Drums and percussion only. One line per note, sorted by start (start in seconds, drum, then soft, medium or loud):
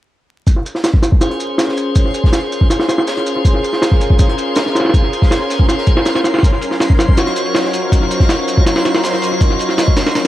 0.47 kick loud
0.47 open hi-hat medium
0.47 shaker medium
0.56 snare soft
0.65 open hi-hat medium
0.65 shaker medium
0.75 snare medium
0.75 snare soft
0.84 snare loud
0.84 open hi-hat medium
0.84 shaker medium
0.94 kick medium
1.03 snare medium
1.03 open hi-hat medium
1.03 shaker medium
1.12 kick medium
1.21 snare medium
1.21 open hi-hat medium
1.21 shaker medium
1.31 snare soft
1.31 closed hi-hat soft
1.40 open hi-hat medium
1.40 shaker medium
1.49 closed hi-hat soft
1.58 snare loud
1.58 open hi-hat medium
1.58 shaker medium
1.68 snare soft
1.77 open hi-hat medium
1.77 shaker medium
1.95 kick loud
1.95 open hi-hat medium
1.95 shaker medium
2.05 snare soft
2.14 open hi-hat medium
2.14 shaker medium
2.24 kick medium
2.24 snare soft
2.33 snare loud
2.33 open hi-hat medium
2.33 shaker medium
2.52 open hi-hat medium
2.52 shaker medium
2.61 kick medium
2.70 snare loud
2.70 open hi-hat medium
2.70 shaker medium
2.80 snare loud
2.80 snare soft
2.80 open hi-hat medium
2.89 snare loud
2.89 open hi-hat medium
2.89 shaker medium
2.98 snare loud
2.98 open hi-hat medium
3.07 snare loud
3.07 open hi-hat medium
3.07 shaker medium
3.17 snare soft
3.17 closed hi-hat soft
3.26 open hi-hat medium
3.26 shaker medium
3.36 snare soft
3.45 kick loud
3.45 open hi-hat medium
3.45 shaker medium
3.54 snare soft
3.63 open hi-hat medium
3.63 shaker medium
3.73 snare soft
3.73 snare medium
3.82 snare loud
3.82 open hi-hat medium
3.82 shaker medium
3.92 kick medium
4.01 open hi-hat medium
4.01 shaker medium
4.10 kick medium
4.19 kick loud
4.19 open hi-hat medium
4.19 shaker medium
4.29 snare soft
4.29 closed hi-hat soft
4.38 open hi-hat medium
4.38 shaker medium
4.48 closed hi-hat soft
4.56 snare loud
4.56 open hi-hat medium
4.56 shaker medium
4.66 snare soft
4.75 snare medium
4.75 open hi-hat medium
4.75 shaker medium
4.80 snare medium
4.80 open hi-hat medium
4.85 snare medium
4.85 open hi-hat medium
4.89 snare medium
4.89 open hi-hat medium
4.94 kick loud
4.94 open hi-hat medium
4.94 shaker medium
5.03 snare soft
5.13 open hi-hat medium
5.13 shaker medium
5.22 kick medium
5.22 snare medium
5.31 snare loud
5.31 open hi-hat medium
5.31 shaker medium
5.50 snare soft
5.50 open hi-hat medium
5.50 shaker medium
5.59 kick medium
5.69 snare medium
5.69 open hi-hat medium
5.69 shaker medium
5.78 snare soft
5.87 kick medium
5.87 open hi-hat medium
5.87 shaker medium
5.97 snare loud
6.05 snare loud
6.05 snare medium
6.05 open hi-hat medium
6.05 shaker medium
6.15 snare loud
6.15 closed hi-hat soft
6.15 open hi-hat medium
6.24 snare loud
6.24 open hi-hat medium
6.24 shaker medium
6.34 snare medium
6.34 open hi-hat medium
6.39 snare medium
6.39 open hi-hat medium
6.43 kick loud
6.43 open hi-hat medium
6.43 shaker medium
6.53 snare soft
6.62 open hi-hat medium
6.62 shaker medium
6.71 snare medium
6.71 snare soft
6.80 snare loud
6.80 open hi-hat medium
6.80 shaker medium
6.90 kick medium
6.99 snare loud
6.99 open hi-hat medium
6.99 shaker medium
7.09 kick medium
7.17 snare medium
7.17 open hi-hat medium
7.17 shaker medium
7.27 snare soft
7.27 closed hi-hat soft
7.36 open hi-hat medium
7.36 shaker medium
7.46 closed hi-hat soft
7.55 snare loud
7.55 open hi-hat medium
7.55 shaker medium
7.64 snare soft
7.64 snare medium
7.73 open hi-hat medium
7.73 shaker medium
7.92 kick loud
7.92 open hi-hat medium
7.92 shaker medium
8.02 snare soft
8.11 open hi-hat medium
8.11 shaker medium
8.20 kick medium
8.20 snare soft
8.29 snare loud
8.29 open hi-hat medium
8.29 shaker medium
8.48 open hi-hat medium
8.48 shaker medium
8.57 kick medium
8.66 snare loud
8.66 open hi-hat medium
8.66 shaker medium
8.76 snare loud
8.76 snare soft
8.76 open hi-hat medium
8.85 snare loud
8.85 open hi-hat medium
8.85 shaker medium
8.94 snare loud
8.94 open hi-hat medium
9.04 snare loud
9.04 open hi-hat medium
9.04 shaker medium
9.13 snare soft
9.13 closed hi-hat soft
9.22 open hi-hat medium
9.22 shaker medium
9.32 snare soft
9.41 kick loud
9.41 open hi-hat medium
9.41 shaker medium
9.50 snare soft
9.59 open hi-hat medium
9.59 shaker medium
9.69 snare medium
9.69 snare soft
9.78 snare loud
9.78 open hi-hat medium
9.78 shaker medium
9.88 kick medium
9.97 snare loud
9.97 open hi-hat medium
9.97 shaker medium
10.07 snare loud
10.07 open hi-hat medium
10.15 snare loud
10.15 open hi-hat medium
10.15 shaker medium